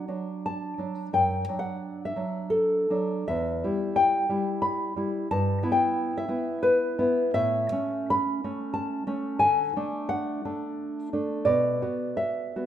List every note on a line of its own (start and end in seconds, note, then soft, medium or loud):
0.00 0.41 F#5 medium
0.08 0.77 F#3 soft
0.08 0.78 D4 soft
0.46 1.13 A5 medium
0.78 1.10 F#3 soft
0.78 1.11 D4 soft
1.13 1.47 F#2 medium
1.13 1.58 G5 medium
1.48 2.15 F#3 soft
1.48 2.16 D4 soft
1.59 2.03 F#5 medium
2.05 2.50 E5 medium
2.16 2.89 F#3 soft
2.16 2.89 D4 soft
2.50 3.25 A4 medium
2.90 3.25 F#3 soft
2.90 3.26 D4 soft
3.28 3.63 E2 medium
3.28 3.94 E5 medium
3.64 4.28 G3 medium
3.64 4.29 E4 medium
3.96 4.60 G5 medium
4.29 4.95 G3 soft
4.29 4.96 E4 soft
4.62 5.27 B5 medium
4.96 5.27 G3 soft
4.96 5.27 E4 medium
5.31 5.62 G2 medium
5.31 5.71 A5 loud
5.63 6.27 B3 medium
5.63 6.28 E4 medium
5.72 6.14 G5 loud
6.17 6.61 E5 medium
6.28 6.98 B3 soft
6.28 6.97 E4 medium
6.63 7.33 B4 medium
6.99 7.32 B3 medium
6.99 7.32 E4 medium
7.34 7.72 A2 medium
7.34 8.08 E5 loud
7.72 8.43 A3 medium
7.72 8.43 C#4 medium
8.10 8.73 B5 loud
8.44 9.06 A3 medium
8.44 9.06 C#4 medium
8.74 9.38 A5 medium
9.07 9.38 A3 medium
9.07 9.38 C#4 medium
9.39 9.75 D3 medium
9.39 10.08 G#5 loud
9.76 10.44 A3 medium
9.76 10.44 D4 medium
10.09 11.45 F#5 loud
10.45 11.12 A3 medium
10.45 11.12 D4 medium
11.13 11.46 A3 soft
11.13 11.46 D4 medium
11.45 11.82 B2 medium
11.45 12.16 D5 medium
11.82 12.55 B3 medium
11.82 12.55 F#4 medium
12.17 12.66 E5 medium
12.56 12.66 B3 soft
12.56 12.66 F#4 soft